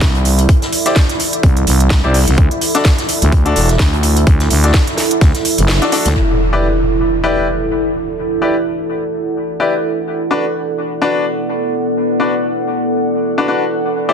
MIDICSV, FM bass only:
0, 0, Header, 1, 2, 480
1, 0, Start_track
1, 0, Tempo, 472441
1, 497, Time_signature, 4, 2, 24, 8
1, 14359, End_track
2, 0, Start_track
2, 0, Title_t, "FM bass"
2, 0, Program_c, 0, 39
2, 1457, Note_on_c, 0, 36, 93
2, 1680, Note_off_c, 0, 36, 0
2, 1697, Note_on_c, 0, 36, 100
2, 2051, Note_off_c, 0, 36, 0
2, 2072, Note_on_c, 0, 36, 107
2, 2291, Note_off_c, 0, 36, 0
2, 2312, Note_on_c, 0, 36, 100
2, 2401, Note_off_c, 0, 36, 0
2, 2416, Note_on_c, 0, 38, 103
2, 2530, Note_off_c, 0, 38, 0
2, 3272, Note_on_c, 0, 38, 102
2, 3601, Note_off_c, 0, 38, 0
2, 3617, Note_on_c, 0, 28, 102
2, 3841, Note_off_c, 0, 28, 0
2, 3857, Note_on_c, 0, 38, 99
2, 4320, Note_off_c, 0, 38, 0
2, 4577, Note_on_c, 0, 38, 100
2, 4800, Note_off_c, 0, 38, 0
2, 5297, Note_on_c, 0, 38, 92
2, 5411, Note_off_c, 0, 38, 0
2, 5672, Note_on_c, 0, 30, 98
2, 5891, Note_off_c, 0, 30, 0
2, 6152, Note_on_c, 0, 38, 97
2, 6241, Note_off_c, 0, 38, 0
2, 14359, End_track
0, 0, End_of_file